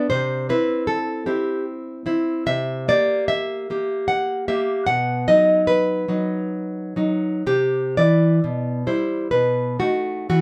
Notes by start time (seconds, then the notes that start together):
0.10 C3 C5
0.49 C4 E4 B4
0.87 A4
1.26 C4 E4 G4
2.06 C4 E4
2.46 C3 E5
2.88 A#3 G4 D5
3.28 E5
3.70 A#3 G4
4.08 F#5
4.48 A#3 G4 E5
4.87 B2 F#5
5.28 F#3 D#4 D#5
5.67 B4
6.08 F#3 D#4
6.96 F#3 D#4
7.46 C3 G4
7.97 E3 E4 D5
8.44 B2
8.87 G3 E4 C5
9.31 B2 B4
9.79 A3 D#4 F#4
10.30 E3 F#4